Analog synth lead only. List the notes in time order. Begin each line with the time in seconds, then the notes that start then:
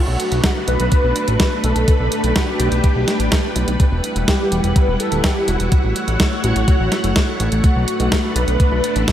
Already playing: F#4
0.68 B4
1.64 A4
1.88 A4
2.36 F#4
2.60 G4
3.22 F#4
4.28 G4
4.76 B4
5.00 A4
5.24 G4
5.48 F#4
6.44 F#4
7.64 F#4
8.36 B4